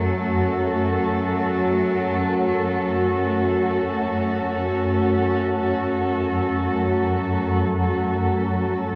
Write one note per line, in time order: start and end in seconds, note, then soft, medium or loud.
0.00 5.32 F#2 medium
0.00 0.69 F#3 medium
0.00 5.47 A3 medium
0.00 8.95 A3 medium
0.00 8.95 C#4 medium
0.00 5.37 F#4 soft
0.00 8.95 F#4 medium
0.00 8.95 A4 medium
0.77 4.17 F#3 medium
5.34 8.95 F#2 medium
5.34 8.95 F#3 medium